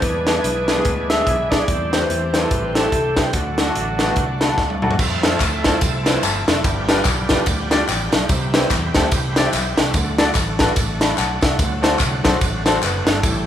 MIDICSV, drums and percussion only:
0, 0, Header, 1, 2, 480
1, 0, Start_track
1, 0, Tempo, 412939
1, 23, Time_signature, 4, 2, 24, 8
1, 15652, End_track
2, 0, Start_track
2, 0, Title_t, "Drums"
2, 24, Note_on_c, 9, 42, 85
2, 25, Note_on_c, 9, 36, 101
2, 140, Note_off_c, 9, 42, 0
2, 142, Note_off_c, 9, 36, 0
2, 309, Note_on_c, 9, 38, 103
2, 312, Note_on_c, 9, 42, 71
2, 425, Note_off_c, 9, 38, 0
2, 428, Note_off_c, 9, 42, 0
2, 514, Note_on_c, 9, 42, 93
2, 630, Note_off_c, 9, 42, 0
2, 789, Note_on_c, 9, 38, 93
2, 792, Note_on_c, 9, 42, 62
2, 905, Note_off_c, 9, 38, 0
2, 908, Note_off_c, 9, 42, 0
2, 985, Note_on_c, 9, 42, 88
2, 992, Note_on_c, 9, 36, 98
2, 1102, Note_off_c, 9, 42, 0
2, 1108, Note_off_c, 9, 36, 0
2, 1277, Note_on_c, 9, 38, 87
2, 1280, Note_on_c, 9, 42, 67
2, 1393, Note_off_c, 9, 38, 0
2, 1396, Note_off_c, 9, 42, 0
2, 1474, Note_on_c, 9, 36, 83
2, 1475, Note_on_c, 9, 42, 86
2, 1590, Note_off_c, 9, 36, 0
2, 1591, Note_off_c, 9, 42, 0
2, 1763, Note_on_c, 9, 36, 81
2, 1766, Note_on_c, 9, 38, 97
2, 1767, Note_on_c, 9, 42, 54
2, 1880, Note_off_c, 9, 36, 0
2, 1882, Note_off_c, 9, 38, 0
2, 1884, Note_off_c, 9, 42, 0
2, 1953, Note_on_c, 9, 42, 81
2, 1955, Note_on_c, 9, 36, 112
2, 2069, Note_off_c, 9, 42, 0
2, 2071, Note_off_c, 9, 36, 0
2, 2242, Note_on_c, 9, 38, 97
2, 2245, Note_on_c, 9, 42, 65
2, 2358, Note_off_c, 9, 38, 0
2, 2361, Note_off_c, 9, 42, 0
2, 2441, Note_on_c, 9, 42, 86
2, 2557, Note_off_c, 9, 42, 0
2, 2716, Note_on_c, 9, 38, 87
2, 2719, Note_on_c, 9, 42, 64
2, 2833, Note_off_c, 9, 38, 0
2, 2835, Note_off_c, 9, 42, 0
2, 2916, Note_on_c, 9, 42, 89
2, 2919, Note_on_c, 9, 36, 104
2, 3032, Note_off_c, 9, 42, 0
2, 3035, Note_off_c, 9, 36, 0
2, 3201, Note_on_c, 9, 38, 85
2, 3203, Note_on_c, 9, 42, 65
2, 3317, Note_off_c, 9, 38, 0
2, 3320, Note_off_c, 9, 42, 0
2, 3398, Note_on_c, 9, 36, 76
2, 3399, Note_on_c, 9, 42, 77
2, 3514, Note_off_c, 9, 36, 0
2, 3516, Note_off_c, 9, 42, 0
2, 3679, Note_on_c, 9, 38, 100
2, 3681, Note_on_c, 9, 42, 54
2, 3685, Note_on_c, 9, 36, 87
2, 3796, Note_off_c, 9, 38, 0
2, 3797, Note_off_c, 9, 42, 0
2, 3802, Note_off_c, 9, 36, 0
2, 3873, Note_on_c, 9, 42, 86
2, 3878, Note_on_c, 9, 36, 100
2, 3990, Note_off_c, 9, 42, 0
2, 3994, Note_off_c, 9, 36, 0
2, 4159, Note_on_c, 9, 38, 101
2, 4162, Note_on_c, 9, 42, 62
2, 4275, Note_off_c, 9, 38, 0
2, 4279, Note_off_c, 9, 42, 0
2, 4364, Note_on_c, 9, 42, 83
2, 4481, Note_off_c, 9, 42, 0
2, 4636, Note_on_c, 9, 38, 90
2, 4639, Note_on_c, 9, 42, 60
2, 4752, Note_off_c, 9, 38, 0
2, 4755, Note_off_c, 9, 42, 0
2, 4834, Note_on_c, 9, 42, 85
2, 4843, Note_on_c, 9, 36, 98
2, 4950, Note_off_c, 9, 42, 0
2, 4959, Note_off_c, 9, 36, 0
2, 5124, Note_on_c, 9, 38, 93
2, 5127, Note_on_c, 9, 42, 69
2, 5241, Note_off_c, 9, 38, 0
2, 5243, Note_off_c, 9, 42, 0
2, 5319, Note_on_c, 9, 38, 53
2, 5322, Note_on_c, 9, 36, 80
2, 5435, Note_off_c, 9, 38, 0
2, 5438, Note_off_c, 9, 36, 0
2, 5465, Note_on_c, 9, 48, 51
2, 5581, Note_off_c, 9, 48, 0
2, 5606, Note_on_c, 9, 45, 72
2, 5703, Note_on_c, 9, 43, 82
2, 5722, Note_off_c, 9, 45, 0
2, 5800, Note_on_c, 9, 49, 88
2, 5802, Note_on_c, 9, 36, 118
2, 5814, Note_on_c, 9, 54, 83
2, 5819, Note_off_c, 9, 43, 0
2, 5917, Note_off_c, 9, 49, 0
2, 5918, Note_off_c, 9, 36, 0
2, 5930, Note_off_c, 9, 54, 0
2, 6084, Note_on_c, 9, 38, 110
2, 6087, Note_on_c, 9, 51, 60
2, 6089, Note_on_c, 9, 54, 53
2, 6200, Note_off_c, 9, 38, 0
2, 6203, Note_off_c, 9, 51, 0
2, 6206, Note_off_c, 9, 54, 0
2, 6278, Note_on_c, 9, 39, 88
2, 6278, Note_on_c, 9, 54, 86
2, 6282, Note_on_c, 9, 36, 91
2, 6288, Note_on_c, 9, 51, 82
2, 6394, Note_off_c, 9, 39, 0
2, 6394, Note_off_c, 9, 54, 0
2, 6398, Note_off_c, 9, 36, 0
2, 6404, Note_off_c, 9, 51, 0
2, 6560, Note_on_c, 9, 38, 98
2, 6562, Note_on_c, 9, 51, 59
2, 6573, Note_on_c, 9, 36, 89
2, 6576, Note_on_c, 9, 54, 58
2, 6676, Note_off_c, 9, 38, 0
2, 6678, Note_off_c, 9, 51, 0
2, 6689, Note_off_c, 9, 36, 0
2, 6693, Note_off_c, 9, 54, 0
2, 6756, Note_on_c, 9, 51, 81
2, 6763, Note_on_c, 9, 36, 115
2, 6774, Note_on_c, 9, 54, 86
2, 6872, Note_off_c, 9, 51, 0
2, 6879, Note_off_c, 9, 36, 0
2, 6890, Note_off_c, 9, 54, 0
2, 7043, Note_on_c, 9, 38, 94
2, 7046, Note_on_c, 9, 51, 58
2, 7053, Note_on_c, 9, 54, 53
2, 7160, Note_off_c, 9, 38, 0
2, 7162, Note_off_c, 9, 51, 0
2, 7169, Note_off_c, 9, 54, 0
2, 7244, Note_on_c, 9, 51, 76
2, 7251, Note_on_c, 9, 39, 97
2, 7251, Note_on_c, 9, 54, 94
2, 7360, Note_off_c, 9, 51, 0
2, 7367, Note_off_c, 9, 39, 0
2, 7367, Note_off_c, 9, 54, 0
2, 7529, Note_on_c, 9, 54, 55
2, 7531, Note_on_c, 9, 38, 117
2, 7533, Note_on_c, 9, 51, 48
2, 7645, Note_off_c, 9, 54, 0
2, 7647, Note_off_c, 9, 38, 0
2, 7649, Note_off_c, 9, 51, 0
2, 7723, Note_on_c, 9, 36, 115
2, 7724, Note_on_c, 9, 51, 75
2, 7729, Note_on_c, 9, 54, 81
2, 7839, Note_off_c, 9, 36, 0
2, 7840, Note_off_c, 9, 51, 0
2, 7846, Note_off_c, 9, 54, 0
2, 8003, Note_on_c, 9, 54, 54
2, 8004, Note_on_c, 9, 38, 105
2, 8007, Note_on_c, 9, 51, 57
2, 8120, Note_off_c, 9, 54, 0
2, 8121, Note_off_c, 9, 38, 0
2, 8124, Note_off_c, 9, 51, 0
2, 8194, Note_on_c, 9, 39, 86
2, 8194, Note_on_c, 9, 54, 86
2, 8199, Note_on_c, 9, 36, 93
2, 8201, Note_on_c, 9, 51, 78
2, 8310, Note_off_c, 9, 39, 0
2, 8310, Note_off_c, 9, 54, 0
2, 8315, Note_off_c, 9, 36, 0
2, 8317, Note_off_c, 9, 51, 0
2, 8474, Note_on_c, 9, 38, 101
2, 8477, Note_on_c, 9, 51, 57
2, 8487, Note_on_c, 9, 54, 58
2, 8490, Note_on_c, 9, 36, 83
2, 8591, Note_off_c, 9, 38, 0
2, 8593, Note_off_c, 9, 51, 0
2, 8604, Note_off_c, 9, 54, 0
2, 8606, Note_off_c, 9, 36, 0
2, 8672, Note_on_c, 9, 51, 84
2, 8682, Note_on_c, 9, 36, 101
2, 8685, Note_on_c, 9, 54, 82
2, 8788, Note_off_c, 9, 51, 0
2, 8798, Note_off_c, 9, 36, 0
2, 8801, Note_off_c, 9, 54, 0
2, 8962, Note_on_c, 9, 38, 99
2, 8964, Note_on_c, 9, 54, 54
2, 8965, Note_on_c, 9, 51, 59
2, 9078, Note_off_c, 9, 38, 0
2, 9081, Note_off_c, 9, 51, 0
2, 9081, Note_off_c, 9, 54, 0
2, 9167, Note_on_c, 9, 39, 91
2, 9167, Note_on_c, 9, 51, 69
2, 9167, Note_on_c, 9, 54, 92
2, 9283, Note_off_c, 9, 39, 0
2, 9283, Note_off_c, 9, 51, 0
2, 9283, Note_off_c, 9, 54, 0
2, 9440, Note_on_c, 9, 54, 55
2, 9446, Note_on_c, 9, 38, 113
2, 9448, Note_on_c, 9, 51, 50
2, 9556, Note_off_c, 9, 54, 0
2, 9562, Note_off_c, 9, 38, 0
2, 9564, Note_off_c, 9, 51, 0
2, 9639, Note_on_c, 9, 51, 75
2, 9642, Note_on_c, 9, 36, 120
2, 9648, Note_on_c, 9, 54, 89
2, 9755, Note_off_c, 9, 51, 0
2, 9758, Note_off_c, 9, 36, 0
2, 9765, Note_off_c, 9, 54, 0
2, 9925, Note_on_c, 9, 38, 115
2, 9928, Note_on_c, 9, 51, 60
2, 9933, Note_on_c, 9, 54, 54
2, 10041, Note_off_c, 9, 38, 0
2, 10044, Note_off_c, 9, 51, 0
2, 10049, Note_off_c, 9, 54, 0
2, 10119, Note_on_c, 9, 36, 91
2, 10123, Note_on_c, 9, 39, 88
2, 10123, Note_on_c, 9, 54, 84
2, 10126, Note_on_c, 9, 51, 79
2, 10235, Note_off_c, 9, 36, 0
2, 10239, Note_off_c, 9, 39, 0
2, 10239, Note_off_c, 9, 54, 0
2, 10242, Note_off_c, 9, 51, 0
2, 10397, Note_on_c, 9, 38, 106
2, 10400, Note_on_c, 9, 51, 59
2, 10409, Note_on_c, 9, 36, 91
2, 10410, Note_on_c, 9, 54, 57
2, 10514, Note_off_c, 9, 38, 0
2, 10516, Note_off_c, 9, 51, 0
2, 10526, Note_off_c, 9, 36, 0
2, 10526, Note_off_c, 9, 54, 0
2, 10595, Note_on_c, 9, 51, 82
2, 10601, Note_on_c, 9, 36, 111
2, 10609, Note_on_c, 9, 54, 86
2, 10711, Note_off_c, 9, 51, 0
2, 10717, Note_off_c, 9, 36, 0
2, 10725, Note_off_c, 9, 54, 0
2, 10881, Note_on_c, 9, 38, 98
2, 10884, Note_on_c, 9, 51, 61
2, 10889, Note_on_c, 9, 54, 57
2, 10997, Note_off_c, 9, 38, 0
2, 11000, Note_off_c, 9, 51, 0
2, 11006, Note_off_c, 9, 54, 0
2, 11078, Note_on_c, 9, 51, 76
2, 11085, Note_on_c, 9, 39, 91
2, 11085, Note_on_c, 9, 54, 88
2, 11194, Note_off_c, 9, 51, 0
2, 11201, Note_off_c, 9, 39, 0
2, 11201, Note_off_c, 9, 54, 0
2, 11362, Note_on_c, 9, 38, 115
2, 11363, Note_on_c, 9, 54, 55
2, 11364, Note_on_c, 9, 51, 47
2, 11479, Note_off_c, 9, 38, 0
2, 11479, Note_off_c, 9, 54, 0
2, 11480, Note_off_c, 9, 51, 0
2, 11552, Note_on_c, 9, 51, 76
2, 11557, Note_on_c, 9, 36, 107
2, 11569, Note_on_c, 9, 54, 81
2, 11669, Note_off_c, 9, 51, 0
2, 11673, Note_off_c, 9, 36, 0
2, 11685, Note_off_c, 9, 54, 0
2, 11839, Note_on_c, 9, 38, 115
2, 11842, Note_on_c, 9, 51, 58
2, 11847, Note_on_c, 9, 54, 51
2, 11955, Note_off_c, 9, 38, 0
2, 11958, Note_off_c, 9, 51, 0
2, 11963, Note_off_c, 9, 54, 0
2, 12028, Note_on_c, 9, 39, 83
2, 12028, Note_on_c, 9, 54, 91
2, 12034, Note_on_c, 9, 36, 94
2, 12041, Note_on_c, 9, 51, 77
2, 12144, Note_off_c, 9, 39, 0
2, 12144, Note_off_c, 9, 54, 0
2, 12150, Note_off_c, 9, 36, 0
2, 12157, Note_off_c, 9, 51, 0
2, 12310, Note_on_c, 9, 38, 97
2, 12313, Note_on_c, 9, 51, 58
2, 12318, Note_on_c, 9, 54, 57
2, 12325, Note_on_c, 9, 36, 86
2, 12427, Note_off_c, 9, 38, 0
2, 12429, Note_off_c, 9, 51, 0
2, 12434, Note_off_c, 9, 54, 0
2, 12441, Note_off_c, 9, 36, 0
2, 12508, Note_on_c, 9, 51, 84
2, 12516, Note_on_c, 9, 36, 105
2, 12520, Note_on_c, 9, 54, 86
2, 12624, Note_off_c, 9, 51, 0
2, 12632, Note_off_c, 9, 36, 0
2, 12636, Note_off_c, 9, 54, 0
2, 12796, Note_on_c, 9, 38, 95
2, 12798, Note_on_c, 9, 54, 55
2, 12799, Note_on_c, 9, 51, 60
2, 12913, Note_off_c, 9, 38, 0
2, 12914, Note_off_c, 9, 54, 0
2, 12916, Note_off_c, 9, 51, 0
2, 12994, Note_on_c, 9, 39, 95
2, 12994, Note_on_c, 9, 54, 96
2, 12998, Note_on_c, 9, 51, 73
2, 13110, Note_off_c, 9, 39, 0
2, 13110, Note_off_c, 9, 54, 0
2, 13115, Note_off_c, 9, 51, 0
2, 13266, Note_on_c, 9, 54, 53
2, 13280, Note_on_c, 9, 38, 113
2, 13281, Note_on_c, 9, 51, 51
2, 13282, Note_on_c, 9, 36, 93
2, 13382, Note_off_c, 9, 54, 0
2, 13396, Note_off_c, 9, 38, 0
2, 13398, Note_off_c, 9, 36, 0
2, 13398, Note_off_c, 9, 51, 0
2, 13473, Note_on_c, 9, 36, 113
2, 13475, Note_on_c, 9, 54, 84
2, 13476, Note_on_c, 9, 51, 76
2, 13589, Note_off_c, 9, 36, 0
2, 13591, Note_off_c, 9, 54, 0
2, 13593, Note_off_c, 9, 51, 0
2, 13751, Note_on_c, 9, 54, 51
2, 13761, Note_on_c, 9, 38, 108
2, 13764, Note_on_c, 9, 51, 62
2, 13867, Note_off_c, 9, 54, 0
2, 13877, Note_off_c, 9, 38, 0
2, 13880, Note_off_c, 9, 51, 0
2, 13940, Note_on_c, 9, 39, 89
2, 13940, Note_on_c, 9, 54, 88
2, 13950, Note_on_c, 9, 36, 95
2, 13960, Note_on_c, 9, 51, 76
2, 14056, Note_off_c, 9, 39, 0
2, 14056, Note_off_c, 9, 54, 0
2, 14067, Note_off_c, 9, 36, 0
2, 14076, Note_off_c, 9, 51, 0
2, 14235, Note_on_c, 9, 38, 98
2, 14237, Note_on_c, 9, 51, 63
2, 14238, Note_on_c, 9, 54, 58
2, 14241, Note_on_c, 9, 36, 89
2, 14351, Note_off_c, 9, 38, 0
2, 14353, Note_off_c, 9, 51, 0
2, 14354, Note_off_c, 9, 54, 0
2, 14357, Note_off_c, 9, 36, 0
2, 14428, Note_on_c, 9, 51, 81
2, 14429, Note_on_c, 9, 54, 81
2, 14431, Note_on_c, 9, 36, 106
2, 14545, Note_off_c, 9, 51, 0
2, 14545, Note_off_c, 9, 54, 0
2, 14547, Note_off_c, 9, 36, 0
2, 14713, Note_on_c, 9, 38, 95
2, 14714, Note_on_c, 9, 54, 57
2, 14715, Note_on_c, 9, 51, 62
2, 14829, Note_off_c, 9, 38, 0
2, 14830, Note_off_c, 9, 54, 0
2, 14832, Note_off_c, 9, 51, 0
2, 14908, Note_on_c, 9, 51, 73
2, 14909, Note_on_c, 9, 39, 96
2, 14909, Note_on_c, 9, 54, 89
2, 15024, Note_off_c, 9, 51, 0
2, 15026, Note_off_c, 9, 39, 0
2, 15026, Note_off_c, 9, 54, 0
2, 15188, Note_on_c, 9, 38, 110
2, 15189, Note_on_c, 9, 54, 52
2, 15190, Note_on_c, 9, 51, 51
2, 15304, Note_off_c, 9, 38, 0
2, 15305, Note_off_c, 9, 54, 0
2, 15306, Note_off_c, 9, 51, 0
2, 15384, Note_on_c, 9, 36, 112
2, 15384, Note_on_c, 9, 51, 82
2, 15398, Note_on_c, 9, 54, 84
2, 15500, Note_off_c, 9, 36, 0
2, 15501, Note_off_c, 9, 51, 0
2, 15514, Note_off_c, 9, 54, 0
2, 15652, End_track
0, 0, End_of_file